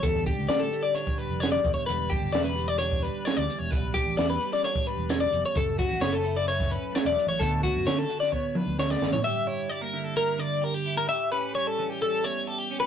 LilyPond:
<<
  \new Staff \with { instrumentName = "Clean electric guitar" } { \time 4/4 \key e \dorian \tempo 4 = 130 a'8 g'8 d''16 a'8 d''16 cis''8 b'8 cis''16 d''8 cis''16 | b'8 g'8 d''16 b'8 d''16 cis''8 b'8 cis''16 d''8 cis''16 | b'8 g'8 d''16 b'8 d''16 cis''8 b'8 cis''16 d''8 cis''16 | a'8 fis'8 cis''16 a'8 d''16 cis''8 b'8 cis''16 d''8 cis''16 |
a'8 fis'8 cis''16 a'8 d''16 cis''8 b'8 cis''16 d''8 cis''16 | e''8 cis''8 d''16 bes'8 a'16 bes'8 d''8 bes'16 g'8 bes'16 | e''8 b'8 cis''16 a'8 g'16 a'8 cis''8 a'16 g'8 b'16 | }
  \new Staff \with { instrumentName = "Clean electric guitar" } { \time 4/4 \key e \dorian << { g8 d'8 g'8 g8 d'8 g4. | g8 d'8 e'16 g'16 g8 d'8 g4. | g8 d'8 e'16 g'16 g8 d'8 g4.~ | g8 g16 a16 b16 cis'16 e'8 a8 cis'8 a4 |
<d b d' fis'>8 b8 b16 d'16 fis'8 b8 d'4. | g'8 e'8 g16 bes16 e'8 bes4 g'8 e'8 | g'8 cis'8 g8 cis'8 g4 g'8 cis'8 | } \\ { <a, d>2. d8 e,8~ | e,2. e8 e,8~ | e,2. e8 e,8 | fis,2.~ fis,8 fis8 |
d,2. e,8 fis,8 | g,4. d4 d4. | a,4. e4 e,4. | } >> }
  \new Staff \with { instrumentName = "Fingered electric bass" } { \clef bass \time 4/4 \key e \dorian e,8. cis,16 a,8 r4 r16 f,,8. e,,16 r16 | e,,8. g,,16 e,,2 r16 d,16 r16 e,,16 | b,,8. a,,16 e,8 r4 r16 e,,8. f,,16 r16 | fis,,8. a,,16 fis,,2 r16 e,,16 r16 a,,16 |
d,8. fis,16 d8 r4 r16 d,8. gis,,16 r16 | r1 | r1 | }
  \new DrumStaff \with { instrumentName = "Drums" } \drummode { \time 4/4 <hh bd>8 <hh bd>8 <hh sn>8 hh8 hh16 bd16 hh8 <hh sn>8 <hh bd>8 | hh8 <hh bd>8 <hh sn>8 hh8 hh16 bd16 hh8 <hh sn>8 hh8 | <hh bd>8 <hh bd>8 <hh sn>8 hh16 sn16 hh16 bd16 hh8 <hh sn>8 hh8 | <hh bd>8 <hh bd sn>8 <hh sn>8 hh8 hh16 <bd sn>16 hh8 <hh sn>8 hh8 |
<hh bd>8 <hh bd>8 <hh sn>8 hh16 sn16 bd8 toml8 sn16 sn16 sn16 tomfh16 | r4 r4 r4 r4 | r4 r4 r4 r4 | }
>>